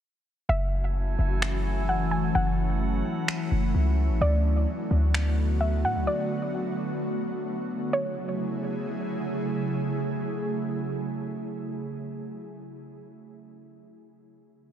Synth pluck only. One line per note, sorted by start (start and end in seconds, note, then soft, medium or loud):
0.49 0.93 E5 loud
1.89 2.11 F#5 medium
2.11 2.34 G#5 medium
2.35 2.79 F#5 loud
4.21 4.65 D5 loud
5.61 5.83 E5 medium
5.85 6.06 F#5 medium
6.07 6.51 D5 loud
7.93 9.29 C#5 medium